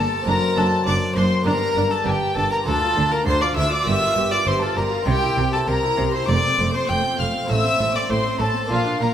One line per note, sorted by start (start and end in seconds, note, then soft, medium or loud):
0.00 0.24 G2 medium
0.00 0.20 A#3 medium
0.00 0.21 D4 medium
0.00 0.26 A4 loud
0.00 0.22 A#4 medium
0.00 0.26 A5 loud
0.22 1.40 C4 medium
0.22 1.41 D4 medium
0.22 1.41 A4 medium
0.26 0.35 F#1 loud
0.26 0.53 F#2 medium
0.26 0.34 F#2 medium
0.26 0.35 D4 medium
0.26 0.58 A#4 loud
0.26 0.57 A#5 loud
0.26 0.56 A#5 loud
0.56 0.64 F#1 medium
0.56 0.64 F#2 medium
0.56 0.83 F#2 medium
0.56 0.64 D4 medium
0.56 0.85 A4 medium
0.56 0.87 A5 loud
0.86 0.95 F#1 medium
0.86 0.94 F#2 medium
0.86 1.13 F#2 medium
0.86 0.94 D4 medium
0.86 1.15 D5 loud
0.86 0.94 D6 loud
0.86 0.95 D6 loud
1.16 1.24 F#1 loud
1.16 1.24 F#2 medium
1.16 1.43 F#2 medium
1.16 1.24 D4 medium
1.16 1.45 C5 loud
1.16 1.24 C6 loud
1.16 1.46 C6 loud
1.41 2.60 A#3 medium
1.41 2.60 D4 medium
1.41 2.62 G4 medium
1.46 1.54 G1 loud
1.46 1.73 G2 medium
1.46 1.54 G2 medium
1.46 1.54 D4 medium
1.46 1.92 A#4 loud
1.46 1.90 A#5 loud
1.46 1.91 A#5 loud
1.76 1.84 G1 medium
1.76 2.03 G2 medium
1.76 1.84 G2 medium
1.76 1.84 D4 medium
1.91 2.07 A4 loud
1.91 2.06 A5 medium
1.91 2.07 A5 loud
2.05 2.14 G1 loud
2.05 2.33 G2 medium
2.05 2.14 G2 medium
2.05 2.13 D4 medium
2.05 2.35 G4 loud
2.05 2.36 G5 medium
2.05 2.36 G5 loud
2.36 2.44 G1 medium
2.36 2.63 G2 medium
2.36 2.44 G2 medium
2.36 2.44 D4 medium
2.36 2.50 A4 loud
2.36 2.51 A5 loud
2.51 2.57 A#4 loud
2.51 2.66 A#5 loud
2.61 3.80 D4 medium
2.61 3.81 F4 medium
2.61 3.82 A4 medium
2.66 2.93 D2 medium
2.66 2.74 D2 loud
2.66 2.80 D4 medium
2.66 3.13 A4 loud
2.66 3.12 A5 loud
2.66 3.11 A5 loud
2.81 2.96 F4 medium
2.95 3.23 D2 medium
2.95 3.04 D2 loud
2.95 3.04 D2 medium
2.95 3.11 D4 medium
3.11 3.26 F4 medium
3.11 3.26 A#4 loud
3.11 3.27 A#5 loud
3.25 3.53 D2 medium
3.25 3.34 D2 loud
3.25 3.34 D2 medium
3.25 3.40 D4 medium
3.25 3.43 C5 loud
3.25 3.41 C6 loud
3.25 3.33 C6 loud
3.41 3.56 F4 medium
3.41 3.56 D5 loud
3.41 3.48 D6 medium
3.41 3.57 D6 loud
3.56 3.83 D2 medium
3.56 3.64 D2 medium
3.56 3.65 D2 medium
3.56 3.71 D4 medium
3.56 3.71 E5 loud
3.56 3.71 E6 loud
3.71 3.86 F4 medium
3.71 3.89 D5 loud
3.71 3.86 D6 loud
3.71 3.87 D6 loud
3.81 5.01 D4 medium
3.81 5.02 F4 medium
3.81 5.02 A#4 medium
3.86 3.94 G1 loud
3.86 4.13 G2 medium
3.86 3.94 G2 medium
3.86 4.00 G4 medium
3.86 4.33 E5 loud
3.86 4.32 E6 loud
4.01 4.16 F4 medium
4.16 4.24 G1 medium
4.16 4.43 G2 medium
4.16 4.24 G2 medium
4.16 4.31 G4 medium
4.31 4.47 F4 medium
4.31 4.48 D5 loud
4.31 4.46 D6 loud
4.31 4.47 D6 loud
4.46 4.54 G1 medium
4.46 4.74 G2 medium
4.46 4.54 G2 loud
4.46 4.60 G4 medium
4.46 4.64 C5 loud
4.46 4.52 C6 loud
4.46 4.62 C6 loud
4.61 4.77 F4 medium
4.61 4.78 A4 medium
4.61 4.77 A5 loud
4.76 4.85 G1 medium
4.76 5.04 G2 medium
4.76 4.85 G2 medium
4.76 4.92 G4 medium
4.76 5.07 A#4 loud
4.76 5.07 A#5 loud
4.76 4.85 A#5 loud
4.92 5.07 F4 medium
5.02 6.22 C4 medium
5.02 6.23 E4 medium
5.02 6.24 A#4 medium
5.06 5.15 C2 loud
5.06 5.34 C3 medium
5.06 5.15 C3 medium
5.06 5.21 G4 medium
5.06 5.54 G4 loud
5.06 5.51 G5 loud
5.06 5.52 G5 loud
5.22 5.38 E4 medium
5.37 5.45 C2 medium
5.37 5.64 C3 medium
5.37 5.45 C3 medium
5.37 5.53 G4 medium
5.52 5.68 E4 medium
5.52 5.69 A4 loud
5.52 5.58 A5 loud
5.52 5.59 A5 loud
5.67 5.76 C2 medium
5.67 5.95 C3 medium
5.67 5.75 C3 medium
5.67 5.82 G4 medium
5.67 6.13 A#4 loud
5.67 6.12 A#5 loud
5.83 5.98 E4 medium
5.97 6.06 C2 loud
5.97 6.25 C3 medium
5.97 6.06 C3 medium
5.97 6.13 G4 medium
6.12 6.28 E4 medium
6.12 6.30 C5 loud
6.12 6.28 C6 loud
6.23 7.43 C4 medium
6.23 7.44 F4 medium
6.23 7.45 A4 medium
6.23 6.73 D6 loud
6.28 6.36 F1 loud
6.28 6.55 F2 medium
6.28 6.36 F2 loud
6.28 6.42 A3 medium
6.28 6.73 D5 loud
6.28 6.72 D6 loud
6.43 6.58 C4 medium
6.58 6.67 F1 medium
6.58 6.86 F2 medium
6.58 6.67 F2 medium
6.58 6.74 A3 medium
6.73 6.89 C4 medium
6.73 6.90 C5 loud
6.73 6.89 C6 loud
6.88 6.97 F1 medium
6.88 7.16 F2 medium
6.88 6.97 F2 medium
6.88 7.03 A3 medium
6.88 7.19 G5 loud
6.88 7.19 G6 loud
7.04 7.19 C4 medium
7.18 7.27 F1 medium
7.18 7.46 F2 medium
7.18 7.27 F2 medium
7.18 7.34 A3 medium
7.18 7.51 F5 medium
7.18 7.49 F6 loud
7.18 7.27 F6 medium
7.34 7.49 C4 medium
7.44 8.64 C4 medium
7.44 8.65 E4 medium
7.44 8.65 A4 medium
7.49 7.57 A1 loud
7.49 7.57 A2 medium
7.49 7.76 A2 medium
7.49 7.63 A3 medium
7.49 7.97 E5 loud
7.49 7.93 E6 loud
7.49 7.94 E6 loud
7.64 7.79 C4 medium
7.79 7.88 A1 medium
7.79 7.87 A2 medium
7.79 8.07 A2 medium
7.79 7.94 A3 medium
7.94 8.09 C4 medium
7.94 8.11 D5 loud
7.94 8.09 D6 loud
7.94 8.01 D6 loud
8.09 8.18 A1 medium
8.09 8.37 A2 medium
8.09 8.17 A2 medium
8.09 8.23 A3 medium
8.09 8.41 C5 loud
8.09 8.39 C6 loud
8.25 8.40 C4 medium
8.39 8.48 A1 medium
8.39 8.47 A2 medium
8.39 8.67 A2 medium
8.39 8.55 A3 medium
8.39 8.71 A4 medium
8.39 8.69 A5 loud
8.39 8.70 A5 loud
8.54 8.70 C4 medium
8.65 9.14 A#3 medium
8.65 9.14 D4 medium
8.65 9.14 F4 medium
8.70 8.78 A#1 medium
8.70 8.97 A#2 medium
8.70 8.78 A#2 medium
8.70 8.84 F4 medium
8.70 9.00 F4 loud
8.70 9.00 F5 loud
8.85 9.00 D4 medium
9.00 9.09 A#1 medium
9.00 9.14 A#2 medium
9.00 9.08 A#2 medium
9.00 9.14 F4 medium
9.00 9.14 A#4 medium
9.00 9.14 A#5 medium